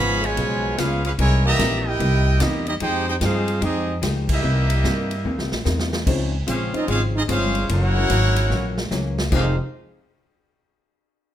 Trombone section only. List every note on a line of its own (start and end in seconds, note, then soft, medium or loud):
0.00 0.22 F3 medium
0.00 0.22 G#3 medium
0.00 0.23 B3 medium
0.23 0.78 B2 medium
0.23 0.78 F3 medium
0.23 0.77 G#3 medium
0.78 1.03 G#3 medium
0.78 1.03 B3 medium
0.78 1.03 F4 medium
1.04 1.11 G#3 medium
1.04 1.11 B3 medium
1.04 1.11 F4 medium
1.19 1.44 G#3 medium
1.45 1.83 E3 medium
1.45 1.83 G3 medium
1.45 1.83 A#3 medium
1.87 2.39 A#3 medium
1.87 2.41 E4 medium
1.87 2.41 G4 medium
2.40 2.66 G3 medium
2.40 2.66 A#3 medium
2.40 2.66 D#4 medium
2.67 2.73 G3 medium
2.67 2.73 A#3 medium
2.67 2.73 D#4 medium
2.81 3.06 C4 medium
2.81 3.06 D#4 medium
2.81 3.06 G4 medium
3.08 3.14 C4 medium
3.08 3.14 D#4 medium
3.08 3.14 G4 medium
3.22 3.60 C4 medium
3.22 3.60 F4 medium
3.22 3.60 G#4 medium
3.63 3.96 G#3 medium
3.63 3.96 C4 medium
3.63 3.96 D#4 medium
4.30 5.62 G3 medium
4.30 5.62 A#3 medium
4.30 5.62 E4 medium
6.47 6.72 G#3 medium
6.47 6.72 C4 medium
6.47 6.72 F4 medium
6.75 6.87 D#4 medium
6.88 7.00 G#3 medium
6.88 7.00 C4 medium
6.88 7.00 F4 medium
7.16 7.22 D#4 medium
7.30 7.67 G#3 medium
7.30 7.67 C#4 medium
7.30 7.67 F4 medium
7.71 8.88 A#3 medium
7.71 8.88 C#4 loud
7.71 8.88 F#4 loud
9.32 9.57 F2 loud
9.32 9.56 C3 loud
9.32 9.57 D#3 loud
9.32 9.57 G#3 loud